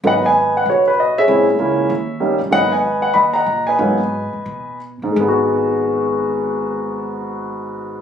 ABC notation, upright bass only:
X:1
M:4/4
L:1/8
Q:"Swing" 1/4=184
K:G#m
V:1 name="Upright bass" clef=bass
G,,,4 B,,,4 | A,,,2 C,,2 D,,3 A,,, | G,,,4 D,,2 A,,,2 | G,,3 z B,,3 =A,, |
G,,,8- | G,,,8 |]